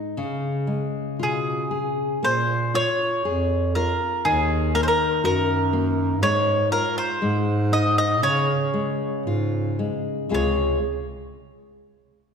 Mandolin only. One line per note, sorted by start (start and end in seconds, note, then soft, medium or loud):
1.23 2.27 G#4 medium
2.25 2.75 C5 medium
2.75 3.75 C#5 medium
3.75 4.26 A#4 medium
4.25 4.70 G#4 medium
4.75 4.81 A#4 medium
4.83 4.87 C5 medium
4.88 5.21 A#4 medium
5.25 6.22 A#4 medium
6.23 6.68 C#5 loud
6.72 6.97 A#4 medium
6.98 7.73 C5 medium
7.73 7.97 D#5 medium
7.98 8.23 D#5 loud
8.23 9.76 C#5 medium
10.34 10.79 C#5 medium